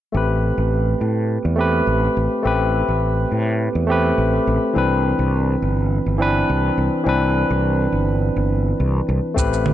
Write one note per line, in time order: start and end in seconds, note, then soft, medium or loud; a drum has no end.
0.12 0.50 A1 medium
0.12 1.54 A3 medium
0.12 1.55 C4 medium
0.12 1.56 G4 medium
0.17 1.57 B4 medium
0.58 0.94 A1 medium
1.01 1.37 A2 medium
1.45 1.80 E2 medium
1.56 2.40 A3 medium
1.56 2.41 C4 medium
1.56 2.42 G4 medium
1.61 2.43 B4 medium
1.87 2.07 A1 medium
2.17 2.27 A1 medium
2.43 2.81 A1 medium
2.43 3.85 A3 medium
2.43 3.86 C4 medium
2.43 3.86 G4 medium
2.47 3.87 B4 medium
2.89 3.24 A1 medium
3.32 3.68 A2 medium
3.75 4.11 E2 medium
3.87 4.71 A3 medium
3.87 4.72 C4 medium
3.87 4.73 G4 medium
3.92 4.74 B4 medium
4.18 4.38 A1 medium
4.47 4.57 A1 medium
4.73 5.12 C2 medium
4.73 6.16 E3 medium
4.73 6.16 C4 medium
4.73 6.17 D4 medium
4.78 6.18 B4 medium
5.19 5.55 C2 medium
5.62 5.98 G1 medium
6.06 6.42 G1 medium
6.18 7.02 E3 medium
6.18 7.03 C4 medium
6.18 7.04 D4 medium
6.22 7.04 B4 loud
6.50 6.69 C2 medium
6.78 6.88 C2 loud
7.04 7.43 C2 loud
7.04 8.46 E3 medium
7.04 8.47 C4 medium
7.04 8.48 D4 medium
7.09 8.49 B4 medium
7.50 7.86 C2 loud
7.92 8.29 G1 medium
8.36 8.72 G1 medium
8.80 9.00 C2 medium
9.09 9.19 C2 medium
9.34 9.73 A1 loud
9.34 9.74 A3 medium
9.34 9.74 C4 medium
9.34 9.74 G4 medium
9.34 kick loud
9.34 shaker soft
9.39 9.74 B4 medium
9.53 shaker soft
9.66 low conga medium